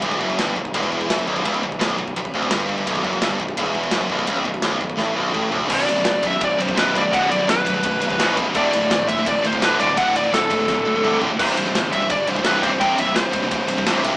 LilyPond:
<<
  \new Staff \with { instrumentName = "Lead electric guitar" } { \time 4/4 \key b \phrygian \tempo 4 = 169 r1 | r1 | r1 | r1 |
d''4. e''8 d''8 c''8 b'8 d''8 | fis''8 d''8 b'2~ b'8 r8 | d''4. e''8 d''8 c''8 b'8 d''8 | fis''8 d''8 a'2~ a'8 r8 |
c''4. e''8 d''8 c''8 b'8 c''8 | g''8 e''8 c''2~ c''8 r8 | }
  \new Staff \with { instrumentName = "Distorted electric guitar" } { \clef bass \time 4/4 \key b \phrygian r1 | r1 | r1 | r1 |
<b,, fis, b,>1 | <b,, fis, b,>1 | <d, a, d>1 | <d, a, d>1 |
<c, g, c>1 | <c, g, c>1 | }
  \new Staff \with { instrumentName = "Distorted electric guitar" } { \clef bass \time 4/4 \key b \phrygian b,,8 fis,8 g,8 b,,8 e,4 fis,8 b,,8 | cis,8 b,,8 b,,8 b,,8 b,,8 d,8 g,4 | b,,8 fis,8 g,8 b,,8 e,4 fis,8 b,,8 | cis,8 b,,8 b,,8 b,,8 a,8 b,,8 a,8 d,8 |
<b,, fis, b,>8 <b,, fis,>16 <b,, fis,>16 <b,, fis,>8 <b,, fis,>16 <b,, fis,>16 <b,, fis,>8 <b,, fis,>16 <b,, fis,>16 <b,, fis, b,>8 <b,, fis, b,>16 <b,, fis,>16 | <b,, fis, b,>8 <b,, fis,>16 <b,, fis,>16 <b,, fis,>8 <b,, fis,>16 <b,, fis,>16 <b,, fis,>8 <b,, fis,>16 <b,, fis,>16 <b,, fis, b,>8 <b,, fis, b,>16 <b,, fis,>16 | <d, a, d>8 <d, a,>16 <d, a,>16 <d, a,>8 <d, a,>16 <d, a,>16 <d, a,>8 <d, a,>16 <d, a,>16 <d, a, d>8 <d, a, d>16 <d, a,>16 | <d, a, d>8 <d, a,>16 <d, a,>16 <d, a,>8 <d, a,>16 <d, a,>16 <d, a,>8 <d, a,>16 <d, a,>16 <d, a, d>8 <d, a, d>16 <d, a,>16 |
<c, g, c>8 <c, g,>16 <c, g,>16 <c, g,>8 <c, g,>16 <c, g,>16 <c, g,>8 <c, g,>16 <c, g,>16 <c, g, c>8 <c, g, c>16 <c, g,>16 | <c, g, c>8 <c, g,>16 <c, g,>16 <c, g,>8 <c, g,>16 <c, g,>16 <c, g,>8 <c, g,>16 <c, g,>16 <c, g, c>8 <c, g, c>16 r16 | }
  \new Staff \with { instrumentName = "Distorted electric guitar" } { \clef bass \time 4/4 \key b \phrygian b,,8 fis,8 g,8 b,,8 e,4 fis,8 b,,8 | cis,8 b,,8 b,,8 b,,8 b,,8 d,8 g,4 | b,,8 fis,8 g,8 b,,8 e,4 fis,8 b,,8 | cis,8 b,,8 b,,8 b,,8 a,8 b,,8 a,8 d,8 |
<b,, fis, b,>8 <b,, fis,>16 <b,, fis,>16 <b,, fis,>8 <b,, fis,>16 <b,, fis,>16 <b,, fis,>8 <b,, fis,>16 <b,, fis,>16 <b,, fis, b,>8 <b,, fis, b,>16 <b,, fis,>16 | <b,, fis, b,>8 <b,, fis,>16 <b,, fis,>16 <b,, fis,>8 <b,, fis,>16 <b,, fis,>16 <b,, fis,>8 <b,, fis,>16 <b,, fis,>16 <b,, fis, b,>8 <b,, fis, b,>16 <b,, fis,>16 | <d, a, d>8 <d, a,>16 <d, a,>16 <d, a,>8 <d, a,>16 <d, a,>16 <d, a,>8 <d, a,>16 <d, a,>16 <d, a, d>8 <d, a, d>16 <d, a,>16 | <d, a, d>8 <d, a,>16 <d, a,>16 <d, a,>8 <d, a,>16 <d, a,>16 <d, a,>8 <d, a,>16 <d, a,>16 <d, a, d>8 <d, a, d>16 <d, a,>16 |
<c, g, c>8 <c, g,>16 <c, g,>16 <c, g,>8 <c, g,>16 <c, g,>16 <c, g,>8 <c, g,>16 <c, g,>16 <c, g, c>8 <c, g, c>16 <c, g,>16 | <c, g, c>8 <c, g,>16 <c, g,>16 <c, g,>8 <c, g,>16 <c, g,>16 <c, g,>8 <c, g,>16 <c, g,>16 <c, g, c>8 <c, g, c>16 r16 | }
  \new Staff \with { instrumentName = "Picked electric bass" } { \clef bass \time 4/4 \key b \phrygian b,,,8 fis,,8 g,,8 b,,,8 e,,4 fis,,8 b,,,8 | cis,,8 b,,,8 b,,,8 b,,,8 b,,,8 d,,8 g,,4 | b,,,8 fis,,8 g,,8 b,,,8 e,,4 fis,,8 b,,,8 | cis,,8 b,,,8 b,,,8 b,,,8 a,,8 b,,,8 a,,8 d,,8 |
b,,,8 b,,,8 fis,,8 b,,,8 fis,,8 b,,,8 b,,,8 b,,,8 | b,,,4 b,,,8 b,,,8 b,,,8 b,,,8 a,,8 b,,,8 | d,,8 d,,8 a,,8 d,,8 a,,8 d,,8 d,,8 d,,8 | d,,4 d,,8 d,,8 d,,8 d,,8 c,8 b,,,8 |
c,,8 c,,8 g,,8 c,,8 g,,8 c,,8 c,,8 c,,8 | c,,4 c,,8 c,,8 c,,8 c,,8 a,,8 c,,8 | }
  \new DrumStaff \with { instrumentName = "Drums" } \drummode { \time 4/4 <bd rb>16 bd16 bd16 bd16 <bd rb sn>16 bd16 bd16 bd16 <bd rb>16 bd16 bd16 bd16 <bd rb sn>16 bd16 bd16 bd16 | <bd rb>16 bd16 bd16 bd16 <bd rb sn>16 bd16 bd16 bd16 <bd rb>16 bd16 bd16 bd16 <bd rb sn>16 bd16 bd16 bd16 | <bd rb>16 bd16 bd16 bd16 <bd rb sn>16 bd16 bd16 bd16 <bd rb>16 bd16 bd16 bd16 <bd rb sn>16 bd16 bd16 bd16 | <bd rb>16 bd16 bd16 bd16 <bd rb sn>16 bd16 bd16 bd16 <bd sn>4 <bd toml>8 tomfh8 |
<cymc bd>8 cymr8 <cymr sn>8 <bd cymr>8 <bd cymr>8 cymr16 bd16 <cymr sn>8 <bd cymr>8 | <bd cymr>8 cymr8 <cymr sn>8 <bd cymr>8 <bd cymr>8 cymr16 bd16 <cymr sn>8 <bd cymr>8 | <bd cymr>8 cymr8 <cymr sn>8 <bd cymr>8 <bd cymr>8 cymr16 bd16 <cymr sn>8 <bd cymr>8 | <bd cymr>8 cymr8 <cymr sn>8 <bd cymr>8 <bd sn>4 toml8 tomfh8 |
<cymc bd>8 cymr8 <cymr sn>8 <bd cymr>8 <bd cymr>8 cymr16 bd16 <cymr sn>8 <bd cymr>8 | <bd cymr>8 cymr8 <cymr sn>8 <bd cymr>8 <bd cymr>8 cymr16 bd16 <cymr sn>8 <bd cymr>8 | }
>>